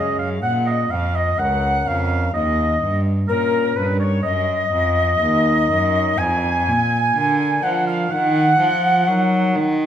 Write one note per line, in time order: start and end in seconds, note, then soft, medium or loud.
0.00 0.38 F#2 medium
0.00 0.43 F#2 medium
0.00 0.38 C#4 soft
0.00 0.39 G#4 medium
0.00 0.18 D#5 medium
0.00 0.21 D#5 loud
0.19 0.30 F5 medium
0.19 0.43 F5 medium
0.41 0.86 A#2 medium
0.41 0.90 A#2 medium
0.41 0.53 F#5 medium
0.41 0.69 F#5 loud
0.66 0.92 D#5 medium
0.66 0.73 F5 medium
0.71 0.93 D#5 medium
0.89 1.34 F2 medium
0.89 1.39 F2 medium
0.89 1.17 F5 medium
0.89 0.96 F#5 medium
0.95 1.17 F5 medium
1.15 1.40 D#5 medium
1.15 1.41 D#5 medium
1.38 1.82 C#2 medium
1.38 1.86 C#2 medium
1.38 2.30 C#4 soft
1.38 2.30 A#4 soft
1.38 1.89 F#5 medium
1.38 1.89 F#5 loud
1.86 2.30 F2 medium
1.86 2.34 F2 medium
1.86 2.33 F5 medium
1.86 2.34 F5 loud
2.34 2.78 D#2 medium
2.34 2.81 D#2 medium
2.34 3.00 D#5 medium
2.34 3.01 D#5 loud
2.81 3.25 G2 medium
2.81 3.28 G2 medium
3.28 3.72 A#2 medium
3.28 3.76 A#2 medium
3.28 4.20 C#4 soft
3.28 3.78 A#4 medium
3.28 3.78 A#4 loud
3.28 4.20 A#4 medium
3.76 4.20 G2 medium
3.76 4.24 G2 medium
3.76 3.99 B4 medium
4.00 4.22 C#5 medium
4.00 4.23 C#5 medium
4.00 4.04 D5 medium
4.23 4.68 F#2 medium
4.23 4.70 F#2 medium
4.23 6.20 D#5 loud
4.23 6.19 D#5 loud
4.72 5.17 F2 medium
4.72 5.20 F2 medium
5.21 5.69 D#2 medium
5.21 5.66 D#2 medium
5.21 6.16 D#4 medium
5.21 6.16 A#4 medium
5.70 6.18 F#2 medium
5.70 6.16 F#2 medium
6.18 6.64 F2 medium
6.18 6.70 F2 medium
6.18 7.64 G#5 loud
6.18 7.65 G#5 loud
6.68 7.16 A#2 medium
6.68 7.12 A#2 medium
7.16 7.60 D3 medium
7.16 7.63 D3 medium
7.16 8.08 D4 soft
7.16 8.08 A#4 medium
7.63 8.07 F3 medium
7.63 8.11 F3 medium
7.63 7.87 F#5 loud
7.63 7.86 F#5 medium
7.87 8.13 F5 medium
7.87 8.14 F5 loud
8.11 8.55 D#3 medium
8.11 8.59 D#3 loud
8.11 9.76 F#5 loud
8.59 9.03 F3 medium
8.59 9.09 F3 medium
9.07 9.51 F#3 medium
9.07 9.58 F#3 medium
9.07 9.86 D#4 medium
9.07 9.86 A#4 medium
9.55 9.86 D#3 medium